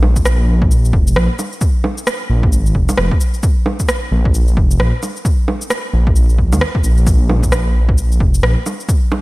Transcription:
0.00 0.47 A#1 medium
0.00 low bongo medium
0.16 kick medium
0.16 shaker medium
0.25 cross-stick loud
0.25 shaker medium
0.48 0.92 A#1 loud
0.62 kick loud
0.71 shaker medium
0.85 shaker soft
0.93 1.14 F1 medium
0.93 kick loud
1.07 shaker medium
1.16 1.29 A#1 loud
1.16 cross-stick loud
1.39 low bongo soft
1.39 shaker medium
1.53 shaker soft
1.61 kick loud
1.61 shaker medium
1.84 low bongo medium
1.98 shaker medium
2.07 cross-stick loud
2.07 shaker medium
2.30 2.53 A#1 medium
2.43 kick loud
2.52 2.73 G#1 medium
2.52 shaker medium
2.66 shaker soft
2.75 2.88 F1 medium
2.75 kick medium
2.89 low bongo soft
2.89 shaker medium
2.98 3.11 F1 medium
2.98 cross-stick loud
3.11 kick loud
3.21 shaker soft
3.34 shaker soft
3.43 kick loud
3.43 shaker medium
3.66 low bongo medium
3.80 kick medium
3.80 shaker medium
3.89 cross-stick loud
3.89 shaker medium
4.12 4.56 A#1 medium
4.25 kick loud
4.34 shaker soft
4.48 shaker soft
4.57 4.78 F1 medium
4.57 kick loud
4.71 shaker soft
4.80 4.92 A#1 loud
4.80 cross-stick loud
5.03 low bongo soft
5.03 shaker medium
5.16 shaker soft
5.25 kick loud
5.25 shaker medium
5.48 low bongo medium
5.62 shaker medium
5.70 cross-stick loud
5.70 shaker medium
5.93 6.15 A#1 loud
6.07 kick loud
6.16 6.53 A#1 loud
6.16 shaker soft
6.29 shaker soft
6.38 kick medium
6.52 6.60 D#2 medium
6.52 low bongo medium
6.52 shaker soft
6.61 cross-stick loud
6.75 kick loud
6.83 7.73 A#1 loud
6.83 shaker medium
6.98 shaker soft
7.07 kick loud
7.07 shaker medium
7.29 low bongo medium
7.43 kick medium
7.43 shaker medium
7.52 cross-stick loud
7.52 shaker medium
7.75 8.19 A#1 loud
7.89 kick loud
7.98 shaker medium
8.12 shaker soft
8.20 8.42 F1 medium
8.20 kick medium
8.34 shaker medium
8.43 8.56 A#1 loud
8.43 cross-stick loud
8.66 low bongo soft
8.66 shaker medium
8.80 shaker soft
8.89 kick loud
8.89 shaker medium
9.12 low bongo medium

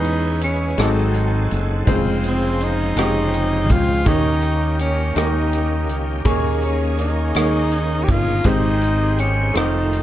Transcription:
0.00 0.74 E2 medium
0.00 0.74 E3 soft
0.00 0.78 E3 soft
0.00 0.68 G#3 medium
0.00 0.68 B3 medium
0.00 0.78 B3 soft
0.00 0.68 C#4 medium
0.00 0.78 C#4 soft
0.00 0.42 D#4 medium
0.00 0.68 G#4 medium
0.00 0.81 G#4 medium
0.00 0.69 B4 medium
0.05 closed hi-hat soft
0.41 0.83 C#4 medium
0.41 closed hi-hat medium
0.77 1.47 G#1 medium
0.77 1.83 G#2 soft
0.77 1.88 F#3 medium
0.77 1.78 G#3 medium
0.77 1.88 G#3 medium
0.77 0.84 A3 soft
0.77 1.87 C4 soft
0.77 1.78 D#4 soft
0.77 1.62 D#4 medium
0.77 1.78 F#4 soft
0.77 1.87 A4 soft
0.77 1.79 A4 medium
0.77 cross-stick medium
0.77 closed hi-hat medium
0.84 1.81 C4 soft
1.14 closed hi-hat soft
1.51 1.85 F#1 medium
1.51 closed hi-hat medium
1.86 2.93 F1 medium
1.86 4.02 C#3 medium
1.86 2.88 C#3 medium
1.86 4.02 F3 medium
1.86 2.87 G#3 medium
1.86 2.87 C4 medium
1.86 2.88 F4 medium
1.86 1.93 G4 soft
1.86 4.02 C5 medium
1.86 2.88 C5 medium
1.86 kick medium
1.86 closed hi-hat medium
1.93 4.05 G#3 medium
2.24 2.65 C4 medium
2.24 closed hi-hat soft
2.61 3.74 D#4 medium
2.61 closed hi-hat medium
2.96 3.70 F1 medium
2.96 3.97 G#3 medium
2.96 3.97 C4 soft
2.96 3.97 C#4 soft
2.96 3.97 F4 soft
2.96 3.98 G4 medium
2.96 cross-stick medium
2.96 closed hi-hat medium
3.34 closed hi-hat soft
3.69 4.03 C#2 medium
3.69 4.09 F4 medium
3.69 kick medium
3.69 closed hi-hat medium
4.05 5.12 D#2 medium
4.05 5.12 D#3 medium
4.05 6.22 D#3 soft
4.05 5.06 A#3 medium
4.05 6.22 A#3 soft
4.05 5.06 C#4 medium
4.05 6.22 C#4 soft
4.05 5.07 D#4 medium
4.05 4.80 D#4 medium
4.05 4.13 F#4 soft
4.05 5.07 G4 medium
4.05 5.07 C#5 medium
4.05 kick medium
4.05 closed hi-hat medium
4.14 6.26 G4 medium
4.42 closed hi-hat soft
4.79 5.18 C#4 medium
4.79 closed hi-hat medium
5.16 5.89 D#2 medium
5.16 6.16 A#3 medium
5.16 6.17 C#4 soft
5.16 5.99 D#4 medium
5.16 6.17 D#4 soft
5.16 6.17 G4 soft
5.16 6.17 D#5 medium
5.16 cross-stick medium
5.16 closed hi-hat medium
5.53 closed hi-hat soft
5.89 6.23 C#2 medium
5.89 closed hi-hat medium
6.25 7.31 D#2 medium
6.25 7.32 D#3 medium
6.25 8.42 D#3 medium
6.25 7.26 A#3 medium
6.25 8.43 A#3 soft
6.25 7.26 C#4 medium
6.25 8.43 C#4 medium
6.25 7.26 D#4 medium
6.25 7.27 G#4 medium
6.25 8.42 G#4 medium
6.25 7.27 C#5 medium
6.25 kick medium
6.25 closed hi-hat medium
6.62 6.98 C#4 medium
6.62 closed hi-hat soft
6.99 8.05 D#4 medium
6.99 closed hi-hat medium
7.35 8.05 D#2 medium
7.35 8.36 A#3 soft
7.35 8.36 C#4 soft
7.35 8.36 D#4 soft
7.35 8.36 G#4 soft
7.35 8.36 C#5 medium
7.35 cross-stick medium
7.35 closed hi-hat medium
7.72 closed hi-hat soft
8.04 8.12 G4 medium
8.08 8.42 G1 medium
8.08 8.48 F4 medium
8.08 kick medium
8.08 closed hi-hat medium
8.44 9.51 G#1 medium
8.44 9.51 G#2 medium
8.44 9.55 D#3 soft
8.44 9.55 G#3 soft
8.44 9.46 G#3 medium
8.44 9.46 C4 medium
8.44 9.46 D#4 medium
8.44 9.21 D#4 medium
8.44 8.52 F#4 soft
8.44 9.46 G4 medium
8.44 9.55 C5 soft
8.44 9.46 C5 medium
8.44 kick medium
8.44 closed hi-hat medium
8.51 9.58 G4 medium
8.82 closed hi-hat soft
9.19 9.56 C#4 medium
9.19 closed hi-hat medium
9.53 10.03 F1 medium
9.53 10.03 D#3 soft
9.53 10.03 A3 soft
9.53 10.03 C4 soft
9.53 10.03 D#4 soft
9.53 10.03 D#4 medium
9.53 9.62 E4 soft
9.53 10.03 F4 soft
9.53 10.03 C5 medium
9.53 cross-stick medium
9.53 closed hi-hat medium
9.63 10.03 F4 medium
9.93 closed hi-hat soft

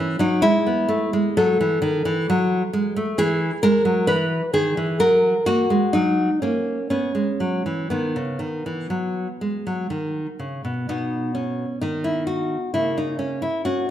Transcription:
0.00 0.19 E3 medium
0.00 0.18 C#4 medium
0.19 0.41 F#3 medium
0.19 0.43 D#4 medium
0.42 0.65 G#3 medium
0.42 1.34 E4 loud
0.67 0.89 B3 medium
0.89 1.13 A3 medium
1.13 1.37 G#3 medium
1.37 1.60 F#3 medium
1.37 2.91 A4 loud
1.61 1.81 E3 medium
1.82 2.04 D#3 medium
2.05 2.27 E3 medium
2.30 2.61 F#3 medium
2.73 2.95 G#3 medium
2.96 3.17 A3 medium
3.18 3.50 E3 medium
3.18 3.61 G#4 loud
3.63 3.84 G#3 medium
3.63 4.06 A#4 loud
3.85 4.06 F#3 medium
4.07 4.41 E3 medium
4.07 4.51 B4 loud
4.53 4.75 D#3 medium
4.53 4.97 G#4 loud
4.77 4.98 E3 medium
5.00 5.33 F#3 medium
5.00 5.44 A#4 loud
5.46 5.69 A#3 medium
5.46 5.91 F#4 medium
5.70 5.92 G#3 medium
5.93 6.29 F#3 medium
5.93 6.39 D#4 medium
6.42 6.78 A#3 medium
6.42 6.89 C#4 medium
6.90 7.14 B3 medium
6.90 7.87 C#4 medium
7.15 7.39 G#3 soft
7.40 7.64 F#3 medium
7.66 7.90 E3 medium
7.90 8.15 D#3 medium
7.90 9.86 B3 medium
8.16 8.40 C#3 medium
8.39 8.64 D#3 soft
8.66 8.90 E3 soft
8.90 9.26 F#3 medium
9.41 9.65 G#3 soft
9.67 9.90 F#3 soft
9.90 10.26 D#3 medium
10.39 10.63 C#3 soft
10.65 10.87 B2 soft
10.89 11.64 B2 soft
10.89 12.71 B3 soft
10.89 11.34 D#4 medium
11.35 11.80 C#4 medium
11.81 12.56 D#3 soft
11.81 12.05 D#4 medium
12.04 12.26 E4 medium
12.27 12.72 F#4 medium
12.74 13.48 C#3 soft
12.74 13.90 A#3 soft
12.74 12.97 E4 medium
12.98 13.18 D#4 medium
13.19 13.43 C#4 medium
13.42 13.64 E4 medium
13.65 13.88 C#4 soft
13.65 13.89 F#4 medium

